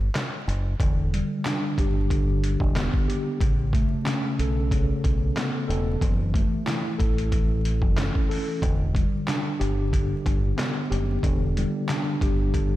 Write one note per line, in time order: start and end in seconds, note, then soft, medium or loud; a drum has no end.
0.15 snare loud
0.15 clap medium
0.15 closed hi-hat loud
0.48 0.73 F#1 medium
0.48 closed hi-hat medium
0.80 1.20 E1 loud
0.80 2.10 D3 loud
0.80 kick loud
0.80 closed hi-hat loud
1.14 3.41 G3 medium
1.14 closed hi-hat medium
1.45 3.41 D4 medium
1.45 snare loud
1.45 clap loud
1.45 closed hi-hat medium
1.78 2.57 G1 medium
1.78 3.07 G4 medium
1.78 kick loud
1.78 closed hi-hat medium
2.10 3.41 D3 medium
2.10 kick medium
2.10 closed hi-hat medium
2.44 closed hi-hat medium
2.60 2.86 E1 medium
2.60 kick loud
2.76 3.41 B3 medium
2.76 snare loud
2.76 clap medium
2.76 closed hi-hat loud
2.94 kick medium
3.08 3.41 G4 medium
3.08 closed hi-hat medium
3.40 3.81 A1 loud
3.40 4.71 C#3 medium
3.40 kick loud
3.40 closed hi-hat loud
3.73 6.02 A3 medium
3.73 kick loud
3.73 closed hi-hat medium
4.05 6.01 C#4 medium
4.05 snare loud
4.05 clap loud
4.05 closed hi-hat medium
4.39 4.90 B1 medium
4.39 5.67 A4 medium
4.39 closed hi-hat medium
4.71 6.02 C#3 medium
4.71 kick medium
4.71 closed hi-hat medium
5.04 5.30 B1 medium
5.04 kick medium
5.04 closed hi-hat medium
5.36 6.01 B3 medium
5.36 snare loud
5.36 clap medium
5.36 closed hi-hat loud
5.68 5.95 E1 medium
5.68 6.01 A4 medium
5.68 closed hi-hat medium
6.01 6.42 F#1 loud
6.01 7.31 E3 medium
6.01 kick loud
6.01 closed hi-hat loud
6.33 8.62 A3 medium
6.33 kick loud
6.33 closed hi-hat medium
6.66 8.62 E4 medium
6.66 snare loud
6.66 clap medium
6.66 closed hi-hat medium
6.98 7.79 A1 medium
6.98 8.28 A4 medium
6.98 kick loud
6.98 closed hi-hat medium
7.18 closed hi-hat medium
7.32 8.63 E3 medium
7.32 kick medium
7.32 closed hi-hat medium
7.65 closed hi-hat medium
7.82 8.08 F#1 medium
7.82 kick loud
7.97 8.62 C#4 medium
7.97 snare loud
7.97 clap medium
7.97 closed hi-hat loud
8.15 kick medium
8.29 8.62 A4 medium
8.29 open hi-hat soft
8.62 9.03 E1 loud
8.62 9.91 D3 medium
8.62 kick loud
8.62 closed hi-hat loud
8.95 11.56 G3 medium
8.95 kick loud
8.95 closed hi-hat medium
9.27 11.88 D4 loud
9.27 snare loud
9.27 clap loud
9.27 closed hi-hat medium
9.60 10.12 G1 medium
9.60 10.89 G4 loud
9.60 closed hi-hat medium
9.92 11.23 D3 medium
9.92 kick medium
9.92 closed hi-hat medium
10.26 10.52 G1 loud
10.26 kick medium
10.26 closed hi-hat medium
10.57 12.76 B3 medium
10.57 snare loud
10.57 clap medium
10.57 closed hi-hat loud
10.90 11.17 F#1 medium
10.90 12.21 G4 medium
10.90 closed hi-hat medium
11.23 11.64 E1 loud
11.23 12.53 D3 loud
11.23 kick loud
11.23 closed hi-hat loud
11.57 12.76 G3 medium
11.57 closed hi-hat medium
11.89 12.76 D4 medium
11.89 snare loud
11.89 clap medium
11.89 closed hi-hat loud
12.21 12.76 G1 medium
12.21 12.76 G4 medium
12.21 kick loud
12.21 closed hi-hat medium
12.54 12.76 D3 medium
12.54 kick medium
12.54 closed hi-hat medium